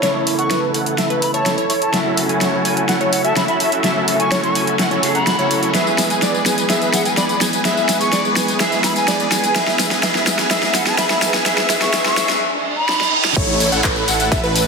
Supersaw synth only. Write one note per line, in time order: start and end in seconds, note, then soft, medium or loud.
0.03 0.36 E4 loud
0.03 0.36 A4 medium
0.03 0.36 C#5 loud
0.39 0.48 E4 medium
0.39 0.48 A4 medium
0.39 0.48 F#5 medium
0.50 0.72 E4 medium
0.50 0.72 A4 medium
0.50 0.72 B4 medium
0.74 0.95 E4 medium
0.74 0.95 A4 medium
0.74 0.95 F#5 medium
0.98 1.07 E4 medium
0.98 1.07 A4 medium
0.98 1.07 E5 medium
1.10 1.31 E4 medium
1.10 1.31 A4 medium
1.10 1.31 B4 medium
1.34 1.55 E4 loud
1.34 1.55 A4 medium
1.34 1.55 C#5 loud
1.58 1.67 E4 medium
1.58 1.67 A4 medium
1.58 1.67 C#5 loud
1.70 1.91 E4 medium
1.70 1.91 A4 medium
1.70 1.91 C#5 loud
1.93 2.26 C#4 medium
1.93 2.26 E4 medium
1.93 2.26 F#4 medium
1.93 2.26 A4 medium
1.93 2.26 E5 loud
2.29 2.38 C#4 medium
2.29 2.38 E4 medium
2.29 2.38 F#4 medium
2.29 2.38 A4 medium
2.29 2.38 G#5 medium
2.41 2.62 C#4 medium
2.41 2.62 E4 medium
2.41 2.62 F#4 medium
2.41 2.62 A4 medium
2.41 2.62 C#5 loud
2.65 2.85 C#4 medium
2.65 2.85 E4 medium
2.65 2.85 F#4 medium
2.65 2.85 A4 medium
2.65 2.85 G#5 loud
2.89 2.98 C#4 medium
2.89 2.98 E4 medium
2.89 2.98 F#4 medium
2.89 2.98 A4 medium
2.89 2.98 F#5 medium
3.01 3.22 C#4 medium
3.01 3.22 E4 medium
3.01 3.22 F#4 medium
3.01 3.22 A4 medium
3.01 3.22 C#5 medium
3.24 3.45 C#4 medium
3.24 3.45 E4 medium
3.24 3.45 F#4 medium
3.24 3.45 A4 medium
3.24 3.45 E5 loud
3.48 3.57 C#4 medium
3.48 3.57 E4 medium
3.48 3.57 F#4 medium
3.48 3.57 A4 medium
3.48 3.57 E5 loud
3.60 3.81 C#4 medium
3.60 3.81 E4 medium
3.60 3.81 F#4 medium
3.60 3.81 A4 medium
3.60 3.81 E5 loud
3.84 4.17 C#4 medium
3.84 4.17 E4 medium
3.84 4.17 F#4 medium
3.84 4.17 A4 medium
3.84 4.17 E5 loud
4.20 4.29 C#4 medium
4.20 4.29 E4 medium
4.20 4.29 F#4 medium
4.20 4.29 A4 medium
4.20 4.29 G#5 medium
4.32 4.53 C#4 medium
4.32 4.53 E4 medium
4.32 4.53 F#4 medium
4.32 4.53 A4 medium
4.32 4.53 C#5 loud
4.55 4.76 C#4 medium
4.55 4.76 E4 medium
4.55 4.76 F#4 medium
4.55 4.76 A4 medium
4.55 4.76 G#5 medium
4.79 4.88 C#4 medium
4.79 4.88 E4 medium
4.79 4.88 F#4 medium
4.79 4.88 A4 medium
4.79 4.88 F#5 medium
4.91 5.12 C#4 medium
4.91 5.12 E4 medium
4.91 5.12 F#4 medium
4.91 5.12 A4 medium
4.91 5.12 C#5 medium
5.15 5.24 C#4 medium
5.15 5.24 E4 medium
5.15 5.24 F#4 medium
5.15 5.24 A4 medium
5.15 5.24 F#5 medium
5.27 5.36 C#4 medium
5.27 5.36 E4 medium
5.27 5.36 F#4 medium
5.27 5.36 A4 medium
5.27 5.36 F#5 medium
5.39 5.49 C#4 medium
5.39 5.49 E4 medium
5.39 5.49 F#4 medium
5.39 5.49 A4 medium
5.39 5.49 C#5 loud
5.51 5.72 C#4 medium
5.51 5.72 E4 medium
5.51 5.72 F#4 medium
5.51 5.72 A4 medium
5.51 5.72 C#5 medium
5.74 6.07 G#4 medium
5.74 6.07 B4 medium
5.74 6.07 E5 loud
6.10 6.19 G#4 medium
6.10 6.19 B4 medium
6.10 6.19 G#5 medium
6.22 6.43 G#4 medium
6.22 6.43 B4 medium
6.22 6.43 D5 medium
6.46 6.66 G#4 medium
6.46 6.66 B4 medium
6.46 6.66 G#5 medium
6.70 7.03 G#4 medium
6.70 7.03 B4 medium
6.70 7.03 E5 loud
7.05 7.15 G#4 medium
7.05 7.14 B4 medium
7.05 7.15 G#5 medium
7.17 7.38 G#4 medium
7.17 7.38 B4 medium
7.17 7.38 D5 medium
7.41 7.61 G#4 medium
7.41 7.61 B4 medium
7.41 7.61 G#5 medium
7.65 7.98 G#4 medium
7.65 7.98 B4 medium
7.65 7.98 E5 loud
8.01 8.10 G#4 medium
8.01 8.10 B4 medium
8.01 8.10 G#5 medium
8.13 8.34 G#4 medium
8.13 8.34 B4 medium
8.13 8.34 D5 medium
8.36 8.57 G#4 medium
8.36 8.57 B4 medium
8.36 8.57 G#5 medium
8.60 8.93 G#4 medium
8.60 8.93 B4 medium
8.60 8.93 E5 loud
8.96 9.05 G#4 medium
8.96 9.05 B4 medium
8.96 9.05 G#5 medium
9.08 9.29 G#4 medium
9.08 9.29 B4 medium
9.08 9.29 D5 loud
9.32 9.52 G#4 medium
9.32 9.52 B4 medium
9.32 9.52 G#5 loud
9.55 9.88 G#4 loud
9.55 9.88 B4 medium
9.55 9.88 E5 loud
9.91 10.00 G#4 medium
9.91 10.00 B4 medium
9.91 10.00 G#5 medium
10.03 10.36 G#4 loud
10.03 10.36 B4 medium
10.03 10.36 E5 loud
10.39 10.48 G#4 medium
10.39 10.48 B4 medium
10.39 10.48 G#5 medium
10.51 10.84 G#4 loud
10.51 10.84 B4 medium
10.51 10.84 E5 loud
10.86 10.95 G#4 medium
10.86 10.95 B4 medium
10.86 10.95 G#5 medium
10.98 11.31 G#4 loud
10.98 11.31 B4 medium
10.98 11.31 E5 loud
11.34 11.43 G#4 medium
11.34 11.43 B4 medium
11.34 11.43 G#5 medium
11.46 11.68 G#4 loud
11.46 11.68 B4 medium
11.46 11.68 E5 loud
11.70 11.92 G#4 loud
11.70 11.92 B4 medium
11.70 11.92 E5 loud
11.93 12.15 G#4 loud
11.93 12.15 B4 medium
11.93 12.15 E5 loud
12.17 12.39 G#4 loud
12.17 12.39 B4 medium
12.17 12.39 E5 loud
13.36 13.69 E4 loud
13.36 13.69 A4 medium
13.36 13.69 C#5 loud
13.72 13.81 E4 medium
13.72 13.81 A4 medium
13.72 13.81 F#5 medium
13.84 14.05 E4 medium
13.84 14.05 A4 medium
13.84 14.05 B4 loud
14.08 14.28 E4 medium
14.08 14.28 A4 medium
14.08 14.28 F#5 loud
14.32 14.41 E4 medium
14.32 14.41 A4 medium
14.32 14.41 E5 medium
14.44 14.65 E4 medium
14.44 14.65 A4 medium
14.44 14.65 B4 medium